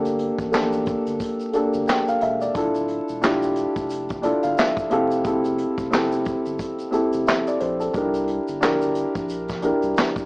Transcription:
Already playing: sub bass G1, upright piano A#3 D4 G4 A4
0.05 closed hi-hat, shaker
0.19 closed hi-hat
0.38 sub bass A1, kick, closed hi-hat, shaker
0.52 upright piano A#3 D4 G4 A4, snare, clap, shaker
0.72 closed hi-hat, shaker
0.86 kick, closed hi-hat, shaker
1.06 sub bass G1, closed hi-hat, shaker
1.20 kick, closed hi-hat, shaker
1.39 closed hi-hat, shaker
1.53 upright piano A#3 D4 G4 A4, closed hi-hat, shaker
1.73 sub bass G1, closed hi-hat, shaker
1.87 upright piano G5, snare, clap, shaker
2.08 upright piano F5, closed hi-hat, shaker
2.21 sub bass E1, upright piano E5, closed hi-hat
2.41 upright piano D5, closed hi-hat, shaker
2.54 sub bass D1, upright piano D4 E4 F4 A4, kick, closed hi-hat, shaker
2.74 closed hi-hat, shaker
2.88 closed hi-hat
3.09 sub bass E1, closed hi-hat, shaker
3.22 upright piano D4 E4 F4 G4, snare, clap, shaker
3.42 closed hi-hat, shaker
3.55 closed hi-hat, shaker
3.76 sub bass F1, kick, closed hi-hat, shaker
3.90 closed hi-hat, shaker
4.09 kick, closed hi-hat, shaker
4.22 upright piano D4 E4 F4 A4 D5, closed hi-hat, shaker
4.43 sub bass G1, upright piano F5, closed hi-hat, shaker
4.58 upright piano E5, snare, clap, shaker
4.77 kick, closed hi-hat, shaker
4.90 sub bass F1, upright piano C4 E4 G4 A4 F5, closed hi-hat
5.11 closed hi-hat, shaker
5.24 upright piano C4 E4 G4 A4, kick, closed hi-hat, shaker
5.44 closed hi-hat, shaker
5.58 closed hi-hat
5.78 sub bass F1, kick, closed hi-hat, shaker
5.91 upright piano C4 E4 G4 A4, snare, clap, shaker
6.12 closed hi-hat, shaker
6.25 kick, closed hi-hat, shaker
6.46 sub bass G1, closed hi-hat, shaker
6.59 kick, closed hi-hat, shaker
6.78 closed hi-hat, shaker
6.91 upright piano C4 E4 G4 A4, closed hi-hat, shaker
7.12 sub bass F1, closed hi-hat, shaker
7.27 upright piano E5, snare, clap, shaker
7.47 upright piano D5, closed hi-hat, shaker
7.60 sub bass A#1, upright piano C5, closed hi-hat
7.80 upright piano A4, closed hi-hat, shaker
7.93 sub bass C2, upright piano D4 D#4 G4 A#4, kick, closed hi-hat, shaker
8.01 upright piano E4
8.14 closed hi-hat, shaker
8.28 closed hi-hat
8.48 sub bass G1, closed hi-hat, shaker
8.61 upright piano D4 E4 G4 A#4, snare, clap, shaker
8.81 closed hi-hat, shaker
8.95 closed hi-hat, shaker
9.15 sub bass A#1, kick, closed hi-hat, shaker
9.29 closed hi-hat, shaker
9.48 kick, snare, closed hi-hat, shaker
9.62 upright piano D4 E4 G4 A#4, closed hi-hat, shaker
9.82 sub bass C2, closed hi-hat, shaker
9.97 snare, clap, shaker
10.16 kick, closed hi-hat, shaker

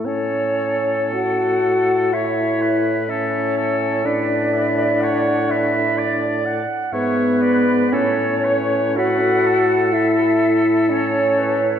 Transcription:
0.05 bassoon A2, french horn C#4, oboe A4, flute C#5
1.14 french horn F#4, flute F#5
2.13 french horn E4, oboe C#5, clarinet C#5, flute E5
2.62 oboe B4
3.09 french horn C#4, oboe A4, flute C#5, clarinet E5
3.58 oboe A4
4.05 bassoon A2, french horn D4, oboe B4, clarinet D5, flute D5
4.53 clarinet E5
5.01 oboe C#5, clarinet F#5
5.50 oboe B4, clarinet E5
5.98 clarinet D5, oboe D5
6.45 clarinet F#5
6.93 bassoon G#2, french horn B3, flute B4, oboe C#5, clarinet E5
7.42 oboe B4, clarinet D5
7.92 bassoon A2, french horn C#4, oboe A4, clarinet C#5, flute C#5
8.44 clarinet B4, oboe C#5
8.97 french horn F#4, clarinet A4, oboe B4, flute F#5
9.46 oboe A4
9.93 french horn E4, flute E5
10.90 french horn C#4, flute C#5, clarinet C#5
11.38 clarinet B4

